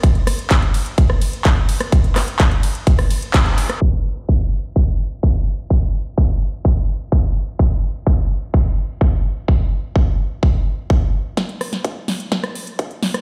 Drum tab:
RD |x-x-x-x-x-x-x-x-|x-x-x-x-x-x-x-x-|----------------|----------------|
HH |xxoxxxoxx-oxx-ox|xxoxxxoxxooxxxox|----------------|----------------|
CP |----x-------x---|--x-x-------x---|----------------|----------------|
SD |--r------r-----r|--r------r-----r|----------------|----------------|
BD |o---o---o---o---|o---o---o---o---|o---o---o---o---|o---o---o---o---|

RD |----------------|----------------|----------------|
HH |----------------|----------------|xxoxx-oxxxoxxxox|
CP |----------------|----------------|----------------|
SD |----------------|----------------|o-ro--o-or----or|
BD |o---o---o---o---|o---o---o---o---|o---o---o---o---|